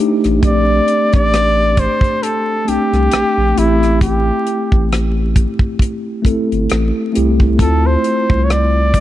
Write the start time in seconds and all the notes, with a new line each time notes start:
Already playing: A3 D4 E4 C5
0.00 D#4 G4
0.24 A1, cross-stick, closed hi-hat
0.41 A#1 A3 C4 G4, kick, closed hi-hat
0.46 D5
0.88 closed hi-hat
1.13 A1 D5, kick, cross-stick, closed hi-hat
1.34 cross-stick, closed hi-hat
1.77 C5, kick, closed hi-hat
2.01 kick, closed hi-hat
2.23 A4, closed hi-hat
2.65 C2 A3 C4 D4 G4, closed hi-hat
2.69 G4
2.93 C2, cross-stick, closed hi-hat
3.11 A#1, cross-stick, closed hi-hat
3.38 A#1
3.55 A1 A3 C4 E4 G4, closed hi-hat
3.83 cross-stick, closed hi-hat
4.01 G4, kick, closed hi-hat
4.47 closed hi-hat
4.72 A1, kick
4.92 cross-stick, closed hi-hat
5.36 kick, closed hi-hat
5.59 kick
5.79 kick, closed hi-hat
6.22 G1 A3 C4 E4, kick, closed hi-hat
6.26 A4
6.52 G1, closed hi-hat
6.70 A1, cross-stick, closed hi-hat
7.13 A3 C4 E4 G4, closed hi-hat
7.17 C2
7.40 kick
7.57 D2 A3 C4 E4 F4, kick, closed hi-hat
7.61 A4
7.86 C5
8.04 closed hi-hat
8.30 C2, kick
8.44 C#5
8.50 D5, cross-stick, closed hi-hat
8.94 kick, closed hi-hat